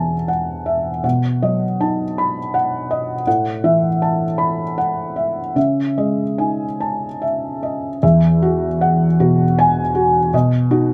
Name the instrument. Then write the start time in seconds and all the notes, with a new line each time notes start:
felt piano
Already playing: E2 B2 B3 E5 F#5 G#5 A5
0.28 F#5
0.66 E5
1.04 B2 F#5
1.43 F#3 D#5
1.81 D#4 A5
2.18 B5
2.54 F#5
2.91 D#5
3.27 A2 F#5
3.64 E3 E5
4.02 A5
4.38 B5
4.78 F#5
5.16 E5
5.56 C#3 E5
5.98 G#3 D#5
6.38 D#4 G#5
6.80 A5
7.22 E5
7.63 D#5
8.03 E2 E5
8.42 F#4
8.81 F#5
9.20 B2 F#4
9.59 G#5
9.95 F#4
10.34 B2 D#5
10.71 D#4 F#4